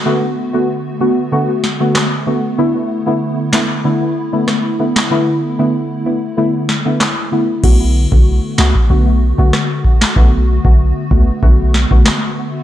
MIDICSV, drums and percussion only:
0, 0, Header, 1, 2, 480
1, 0, Start_track
1, 0, Key_signature, 2, "minor"
1, 0, Tempo, 631579
1, 44, Time_signature, 4, 2, 24, 8
1, 9601, End_track
2, 0, Start_track
2, 0, Title_t, "Drums"
2, 1244, Note_on_c, 9, 38, 57
2, 1320, Note_off_c, 9, 38, 0
2, 1483, Note_on_c, 9, 37, 79
2, 1483, Note_on_c, 9, 38, 99
2, 1490, Note_on_c, 9, 39, 80
2, 1559, Note_off_c, 9, 37, 0
2, 1559, Note_off_c, 9, 38, 0
2, 1566, Note_off_c, 9, 39, 0
2, 2682, Note_on_c, 9, 38, 109
2, 2689, Note_on_c, 9, 39, 91
2, 2758, Note_off_c, 9, 38, 0
2, 2765, Note_off_c, 9, 39, 0
2, 3403, Note_on_c, 9, 37, 84
2, 3403, Note_on_c, 9, 38, 61
2, 3479, Note_off_c, 9, 37, 0
2, 3479, Note_off_c, 9, 38, 0
2, 3771, Note_on_c, 9, 38, 115
2, 3778, Note_on_c, 9, 39, 87
2, 3847, Note_off_c, 9, 38, 0
2, 3854, Note_off_c, 9, 39, 0
2, 5084, Note_on_c, 9, 38, 58
2, 5160, Note_off_c, 9, 38, 0
2, 5323, Note_on_c, 9, 37, 82
2, 5323, Note_on_c, 9, 38, 100
2, 5330, Note_on_c, 9, 39, 84
2, 5399, Note_off_c, 9, 37, 0
2, 5399, Note_off_c, 9, 38, 0
2, 5406, Note_off_c, 9, 39, 0
2, 5803, Note_on_c, 9, 36, 119
2, 5803, Note_on_c, 9, 49, 98
2, 5879, Note_off_c, 9, 36, 0
2, 5879, Note_off_c, 9, 49, 0
2, 6172, Note_on_c, 9, 36, 92
2, 6248, Note_off_c, 9, 36, 0
2, 6523, Note_on_c, 9, 38, 116
2, 6530, Note_on_c, 9, 39, 92
2, 6599, Note_off_c, 9, 38, 0
2, 6606, Note_off_c, 9, 39, 0
2, 6652, Note_on_c, 9, 36, 88
2, 6728, Note_off_c, 9, 36, 0
2, 7245, Note_on_c, 9, 37, 85
2, 7245, Note_on_c, 9, 38, 63
2, 7321, Note_off_c, 9, 37, 0
2, 7321, Note_off_c, 9, 38, 0
2, 7483, Note_on_c, 9, 36, 94
2, 7559, Note_off_c, 9, 36, 0
2, 7611, Note_on_c, 9, 38, 111
2, 7618, Note_on_c, 9, 39, 93
2, 7687, Note_off_c, 9, 38, 0
2, 7694, Note_off_c, 9, 39, 0
2, 7724, Note_on_c, 9, 36, 121
2, 7800, Note_off_c, 9, 36, 0
2, 8092, Note_on_c, 9, 36, 95
2, 8168, Note_off_c, 9, 36, 0
2, 8444, Note_on_c, 9, 36, 97
2, 8520, Note_off_c, 9, 36, 0
2, 8685, Note_on_c, 9, 36, 95
2, 8761, Note_off_c, 9, 36, 0
2, 8924, Note_on_c, 9, 38, 61
2, 9000, Note_off_c, 9, 38, 0
2, 9052, Note_on_c, 9, 36, 99
2, 9128, Note_off_c, 9, 36, 0
2, 9163, Note_on_c, 9, 37, 82
2, 9163, Note_on_c, 9, 38, 105
2, 9170, Note_on_c, 9, 39, 85
2, 9239, Note_off_c, 9, 37, 0
2, 9239, Note_off_c, 9, 38, 0
2, 9246, Note_off_c, 9, 39, 0
2, 9601, End_track
0, 0, End_of_file